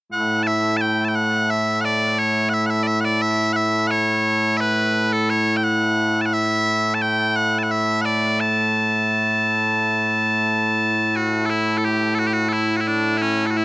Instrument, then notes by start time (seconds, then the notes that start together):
bagpipes
0.12 A2 A3 E4 F#5
0.43 E5 A5
0.77 A5
0.81 G5
1.05 G5 A5
1.15 F#5
1.50 E5
1.81 F#5
1.85 D5
2.19 C#5
2.49 F#5
2.54 E5
2.66 F#5
2.70 E5
2.83 D5
2.87 E5
3.00 F#5
3.05 D5
3.22 E5
3.53 E5 F#5
3.87 C#5 F#5
4.57 B4 E5
5.13 A4
5.30 C#5
5.57 G5
5.64 F#5
6.21 A5
6.26 F#5
6.33 E5
6.94 A5
7.02 G5
7.36 F#5
7.59 A5
7.63 F#5
7.71 E5
8.01 D5 F#5
8.40 A5
11.16 F#4
11.46 A4
11.50 E4
11.78 A4
11.85 G4
12.15 A4
12.19 F#4
12.26 G4
12.33 F#4
12.49 E4 A4
12.76 F#4
12.80 E4
12.88 D4
13.18 E4
13.22 C#4
13.46 A4
13.51 F#4
13.57 E4